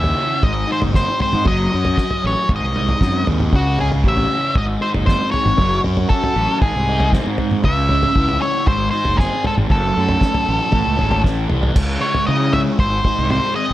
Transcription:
Already playing: fingered electric bass D#2, distorted electric guitar C#3 C#4 E4, lead electric guitar E5
0.04 floor tom
0.17 distorted electric guitar C#4
0.42 fingered electric bass G#1, distorted electric guitar G#2, lead electric guitar D#5, kick, floor tom
0.67 distorted electric guitar D#4
0.72 lead electric guitar C5
0.82 fingered electric bass F#1, floor tom
0.94 distorted electric guitar C4, lead electric guitar C5, kick, snare
1.20 distorted electric guitar G#3, lead electric guitar C5, floor tom
1.33 fingered electric bass G#2, mid tom
1.45 fingered electric bass F#1, distorted electric guitar F#3, lead electric guitar D#5, kick, floor tom
1.72 fingered electric bass F#2, distorted electric guitar C#4
1.85 floor tom
1.98 distorted electric guitar F#4, kick, snare
2.11 floor tom
2.24 fingered electric bass A1, distorted electric guitar C#4, lead electric guitar C#5
2.49 fingered electric bass G#1, distorted electric guitar G#2, kick, floor tom
2.56 lead electric guitar D#5
2.62 fingered electric bass C2
2.76 distorted electric guitar D#4, floor tom
2.89 floor tom
3.01 fingered electric bass F#2, distorted electric guitar C4, kick, snare, mid tom
3.27 fingered electric bass D#2, distorted electric guitar G#3, floor tom
3.40 floor tom, mid tom
3.53 fingered electric bass C#2, distorted electric guitar C#3, lead electric guitar F#4, kick, floor tom
3.79 distorted electric guitar C#4, lead electric guitar G#4, floor tom
3.92 floor tom
4.04 fingered electric bass A1, distorted electric guitar E4, kick
4.08 lead electric guitar E5
4.17 floor tom
4.30 distorted electric guitar C#4
4.56 fingered electric bass G#1, distorted electric guitar G#2, lead electric guitar D#5, kick, floor tom
4.82 distorted electric guitar D#4, lead electric guitar C5
4.94 fingered electric bass F#1, floor tom
5.06 distorted electric guitar C4, lead electric guitar C5, kick, snare
5.32 distorted electric guitar G#3, lead electric guitar C#5, floor tom
5.45 fingered electric bass G#1, mid tom
5.58 fingered electric bass F#1, distorted electric guitar F#3, kick, floor tom
5.84 fingered electric bass F#2, distorted electric guitar C#4, floor tom
5.97 floor tom
6.09 distorted electric guitar F#4, lead electric guitar A4, kick
6.23 floor tom
6.36 fingered electric bass A1, distorted electric guitar C#4
6.62 fingered electric bass G#1, distorted electric guitar G#2, lead electric guitar G#4, kick, floor tom
6.75 fingered electric bass C2
6.89 distorted electric guitar D#4
7.00 floor tom
7.13 distorted electric guitar C4, kick, snare
7.27 fingered electric bass G#2
7.38 distorted electric guitar G#3, floor tom
7.51 mid tom
7.64 fingered electric bass C#2, distorted electric guitar C#3, lead electric guitar E5, kick, floor tom
7.89 distorted electric guitar C#4, floor tom
8.03 floor tom
8.16 fingered electric bass C#2, distorted electric guitar E4, kick
8.29 floor tom
8.42 distorted electric guitar C#4, lead electric guitar C#5
8.67 fingered electric bass G#1, distorted electric guitar G#2, lead electric guitar C5, kick, floor tom
8.91 distorted electric guitar D#4, lead electric guitar C5
9.05 fingered electric bass F#1, floor tom
9.18 distorted electric guitar C4, lead electric guitar G#4, kick, snare
9.43 distorted electric guitar G#3, lead electric guitar A4, floor tom
9.57 fingered electric bass G#1, mid tom
9.69 fingered electric bass F#1, distorted electric guitar F#2, lead electric guitar A4, kick, floor tom
9.96 fingered electric bass F#2, distorted electric guitar A3
10.09 floor tom
10.21 distorted electric guitar C#4, kick, snare
10.34 floor tom
10.45 fingered electric bass A1, distorted electric guitar A3
10.71 fingered electric bass A1, distorted electric guitar A2, kick, floor tom
10.87 fingered electric bass C#2
10.97 distorted electric guitar C#4, floor tom
11.01 fingered electric bass G#1
11.11 floor tom
11.23 fingered electric bass A1, distorted electric guitar A3, kick, snare
11.49 fingered electric bass C2, distorted electric guitar E3, mid tom
11.63 floor tom
11.76 fingered electric bass C#2, distorted electric guitar C#3, kick, floor tom, crash
12.01 distorted electric guitar G#3, lead electric guitar C#5
12.14 floor tom
12.27 fingered electric bass C#3, distorted electric guitar E4, lead electric guitar D#5
12.53 distorted electric guitar G#3, lead electric guitar E5, floor tom
12.79 fingered electric bass G#1, distorted electric guitar G#2, lead electric guitar C5, kick
13.05 distorted electric guitar D#4, kick, floor tom
13.18 fingered electric bass C2
13.30 distorted electric guitar C4, lead electric guitar C5, floor tom
13.55 distorted electric guitar G#4, lead electric guitar D#5

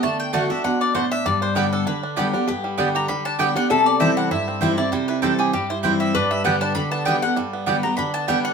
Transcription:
Already playing: five-string banjo D4
0.03 steel-string acoustic guitar D3, five-string banjo A3, mandolin A5
0.20 mandolin G5
0.33 steel-string acoustic guitar D3 A3 D4 F#4, mandolin A3 F#4 D5 F#5 A5, five-string banjo A3
0.50 five-string banjo D4, steel-string acoustic guitar D4 F#4, mandolin E5
0.64 steel-string acoustic guitar B2, five-string banjo D3, mandolin F#5
0.81 five-string banjo D4, mandolin D5
0.94 steel-string acoustic guitar A2, mandolin A3 F#4 C5 D5 A5, five-string banjo D4
1.12 five-string banjo D4, mandolin E5
1.26 steel-string acoustic guitar G2, five-string banjo G3, mandolin D5
1.42 five-string banjo D4, mandolin C5
1.55 steel-string acoustic guitar D3 G3 B3 G4, five-string banjo G3, mandolin B3 G4 B4 D5 G5
1.73 five-string banjo D4, mandolin A4
1.87 five-string banjo D3, steel-string acoustic guitar D3, mandolin B4
2.03 five-string banjo D4
2.16 steel-string acoustic guitar D3 G3 B3 G4, mandolin B3 G4 D5 G5, five-string banjo G4
2.33 steel-string acoustic guitar B3 G4, five-string banjo D4
2.48 steel-string acoustic guitar G2, five-string banjo B3, resonator guitar played with a steel bar G4
2.64 five-string banjo G3
2.78 steel-string acoustic guitar D3 G3 B3 G4, mandolin B3 G4 D5 G5, five-string banjo D4
2.95 five-string banjo G4, mandolin A#5
3.08 steel-string acoustic guitar D3, five-string banjo G3, mandolin B5
3.25 five-string banjo D4, mandolin A5
3.39 steel-string acoustic guitar D3 G3 B3 G4, mandolin B3 G4 D5 G5, five-string banjo G4
3.56 steel-string acoustic guitar B3 G4, five-string banjo D4, mandolin F#5
3.70 steel-string acoustic guitar C3, five-string banjo G3, resonator guitar played with a steel bar A4, mandolin E5
3.86 mandolin D5
4.00 steel-string acoustic guitar E3 G3 C4 E4, five-string banjo G3, mandolin C4 E4 C5 E5 G5
4.17 five-string banjo C4, mandolin F#5
4.31 steel-string acoustic guitar G2, five-string banjo E4, mandolin E5
4.48 five-string banjo C4
4.61 steel-string acoustic guitar E3 G3 C4 E4, five-string banjo G3, mandolin C4 E4 C5 G5
4.77 steel-string acoustic guitar C4 E4, five-string banjo E4, mandolin D5
4.92 steel-string acoustic guitar C3, five-string banjo G3, mandolin C5
5.08 five-string banjo E4, mandolin B4
5.22 steel-string acoustic guitar E3 G3 C4 E4, five-string banjo G3, mandolin C4 E4 A4 C5 G5
5.39 five-string banjo G4, mandolin G#4
5.53 steel-string acoustic guitar G2, five-string banjo G3, mandolin G4
5.70 five-string banjo E4, mandolin C5
5.83 steel-string acoustic guitar E3 G3 C4 E4, mandolin C4 E4 C5 G5, five-string banjo C4
6.00 five-string banjo G3, mandolin E5
6.14 steel-string acoustic guitar G2, five-string banjo D4, resonator guitar played with a steel bar B4, mandolin D5
6.31 five-string banjo G3, mandolin E5
6.44 steel-string acoustic guitar D3 G3 B3 G4, mandolin B3 G4 D5 F#5 G5, five-string banjo B3
6.61 five-string banjo D4, mandolin A5
6.75 steel-string acoustic guitar D3, five-string banjo G3, mandolin B5
6.91 five-string banjo B3, mandolin A5
7.05 steel-string acoustic guitar D3 G3 B3 G4, mandolin B3 G4 D5 G5, five-string banjo D4
7.22 five-string banjo D3, steel-string acoustic guitar B3 G4, mandolin F#5
7.36 steel-string acoustic guitar G2, five-string banjo G3
7.53 five-string banjo B3
7.66 steel-string acoustic guitar D3 G3 B3 G4, five-string banjo G3, mandolin B3 G4 D5 G5
7.83 five-string banjo B3, steel-string acoustic guitar B3 G4, mandolin A#5
7.97 steel-string acoustic guitar D3, five-string banjo D4, mandolin B5
8.14 five-string banjo B3, mandolin A5
8.28 steel-string acoustic guitar D3 G3 B3 G4, five-string banjo G3, mandolin B3 G4 D5 G5
8.45 five-string banjo D4, mandolin F#5

